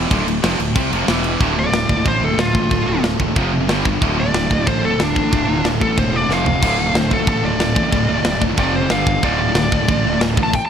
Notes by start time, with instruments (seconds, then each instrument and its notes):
Already playing: distorted electric guitar B2 E3
0.10 fingered electric bass D1, distorted electric guitar D2 A2 D3, kick, crash
0.27 fingered electric bass D1, distorted electric guitar D2 A2, crash
0.42 fingered electric bass F1, distorted electric guitar F2 C3 F3, snare, crash
0.59 fingered electric bass D1, distorted electric guitar D2 A2, crash
0.75 fingered electric bass C2, distorted electric guitar C3 G3 C4, kick, crash
0.91 fingered electric bass F1, distorted electric guitar F2 C3 F3, crash
1.07 fingered electric bass E1, distorted electric guitar E2 B2 E3, snare, crash
1.24 crash
1.39 fingered electric bass D1, distorted electric guitar D2 A2 D3 A3, kick, china
1.44 distorted electric guitar F4
1.57 distorted electric guitar D2 A2, lead electric guitar D5
1.64 distorted electric guitar D2 A2
1.72 fingered electric bass D1, distorted electric guitar D2 A2, snare, china
1.88 fingered electric bass D1, distorted electric guitar D2 A2, kick
1.97 distorted electric guitar D2 A2
2.04 fingered electric bass A1, distorted electric guitar D2 A2 D3 A3 F4, lead electric guitar C5, kick, china
2.21 fingered electric bass D1, distorted electric guitar D2 A2, lead electric guitar A4
2.31 distorted electric guitar D2 A2
2.38 fingered electric bass D1, distorted electric guitar D2 A2, lead electric guitar F4, snare, china
2.55 fingered electric bass A1, distorted electric guitar D2 A2, kick
2.63 distorted electric guitar D2 A2
2.71 fingered electric bass D1, distorted electric guitar D2 A2 D3 A3 F4, kick, china
2.87 fingered electric bass D1, distorted electric guitar D2 A2
2.95 distorted electric guitar D2 A2
3.04 fingered electric bass D1, distorted electric guitar D2 A2, snare, china
3.20 fingered electric bass E1, distorted electric guitar D2 A2, kick
3.28 distorted electric guitar D2 A2
3.36 fingered electric bass F1, distorted electric guitar F2 C3 F3, kick, china
3.54 distorted electric guitar F2 C3
3.61 distorted electric guitar F2 C3
3.69 fingered electric bass G1, distorted electric guitar G2 D3 G3, snare, china
3.85 distorted electric guitar G2 D3, kick
3.93 distorted electric guitar G2 D3
4.02 fingered electric bass D1, distorted electric guitar D2 A2 D3 A3 F4, kick, china
4.18 distorted electric guitar D2 A2, lead electric guitar D5
4.26 distorted electric guitar D2 A2
4.34 fingered electric bass D1, distorted electric guitar D2 A2, snare, china
4.50 fingered electric bass D1, distorted electric guitar D2 A2, kick
4.59 distorted electric guitar D2 A2
4.66 fingered electric bass A1, distorted electric guitar D2 A2 D3 A3 F4, lead electric guitar C5, kick, china
4.83 fingered electric bass D1, distorted electric guitar D2 A2, lead electric guitar A4
4.91 distorted electric guitar D2 A2
4.99 fingered electric bass D1, distorted electric guitar D2 A2, lead electric guitar D4, snare, china
5.16 fingered electric bass A1, distorted electric guitar D2 A2, kick
5.23 distorted electric guitar D2 A2
5.32 fingered electric bass D1, distorted electric guitar D2 A2 D3 A3 F4, kick, china
5.47 fingered electric bass D1, distorted electric guitar D2 A2
5.56 distorted electric guitar D2 A2
5.64 fingered electric bass D1, distorted electric guitar D2 A2, snare, china
5.80 fingered electric bass A1, distorted electric guitar D2 A2, lead electric guitar A4, kick
5.87 distorted electric guitar D2 A2
5.96 fingered electric bass E1, distorted electric guitar D2 A2 D3 A3, lead electric guitar C5, kick, china
6.00 distorted electric guitar F4
6.13 distorted electric guitar D2 A2, lead electric guitar D5
6.21 distorted electric guitar D2 A2
6.29 fingered electric bass F1, distorted electric guitar F2 C3 F3, lead electric guitar F5, snare
6.45 distorted electric guitar F2 C3, floor tom
6.53 distorted electric guitar F2 C3
6.61 fingered electric bass D1, distorted electric guitar D2 A2 D3 A3, kick, crash, china, splash
6.66 distorted electric guitar F4
6.78 distorted electric guitar D2 A2
6.86 distorted electric guitar D2 A2
6.94 fingered electric bass D1, distorted electric guitar D2 A2, lead electric guitar C5, snare, china
7.11 fingered electric bass D1, distorted electric guitar D2 A2, lead electric guitar A4, kick
7.19 distorted electric guitar D2 A2
7.27 fingered electric bass A1, distorted electric guitar D2 A2 D3 A3 F4, lead electric guitar A4, kick, china
7.43 fingered electric bass D1, distorted electric guitar D2 A2, lead electric guitar D5
7.52 distorted electric guitar D2 A2
7.59 fingered electric bass D1, distorted electric guitar D2 A2, snare, china
7.75 fingered electric bass A1, distorted electric guitar D2 A2, kick
7.83 distorted electric guitar D2 A2
7.92 fingered electric bass D1, distorted electric guitar D2 A2 D3 A3 F4, kick, china
8.08 fingered electric bass D1, distorted electric guitar D2 A2
8.16 distorted electric guitar D2 A2
8.24 fingered electric bass D1, distorted electric guitar D2 A2, snare, china
8.40 fingered electric bass E1, distorted electric guitar D2 A2, kick
8.49 distorted electric guitar D2 A2
8.57 fingered electric bass F1, distorted electric guitar F2 C3 F3, lead electric guitar D5, kick, china
8.73 distorted electric guitar F2 C3, lead electric guitar C5
8.82 distorted electric guitar F2 C3
8.90 fingered electric bass G1, distorted electric guitar G2 D3 G3, lead electric guitar F5, snare, china
9.07 distorted electric guitar G2 D3, kick
9.16 distorted electric guitar G2 D3
9.23 fingered electric bass D1, distorted electric guitar D2 A2 D3 A3 F4, lead electric guitar D5, kick, china
9.40 distorted electric guitar D2 A2
9.49 distorted electric guitar D2 A2
9.55 fingered electric bass D1, distorted electric guitar D2 A2, snare, china
9.72 fingered electric bass D1, distorted electric guitar D2 A2, kick
9.81 distorted electric guitar D2 A2
9.88 fingered electric bass A1, distorted electric guitar D2 A2 D3 A3 F4, kick, china
10.05 fingered electric bass D1, distorted electric guitar D2 A2
10.13 distorted electric guitar D2 A2
10.21 fingered electric bass D1, distorted electric guitar D2 A2, snare, china
10.37 fingered electric bass A1, distorted electric guitar D2 A2, kick
10.43 distorted electric guitar D2 A2, lead electric guitar A5
10.53 lead electric guitar G5, kick, crash
10.66 lead electric guitar A5